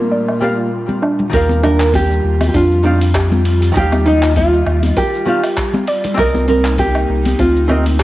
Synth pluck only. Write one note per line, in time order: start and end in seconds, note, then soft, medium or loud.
0.12 0.29 D5 medium
0.42 0.71 G4 medium
1.02 1.20 D4 loud
1.63 1.81 D4 loud
2.54 2.72 D4 medium
2.85 3.12 D4 medium
3.15 3.33 G4 loud
4.06 4.23 D#4 loud
4.97 5.14 A#4 medium
5.27 5.55 F4 medium
5.88 6.15 D5 medium
6.48 6.66 C4 loud
7.39 7.57 C4 medium
7.69 7.97 C4 medium
7.99 8.03 G4 loud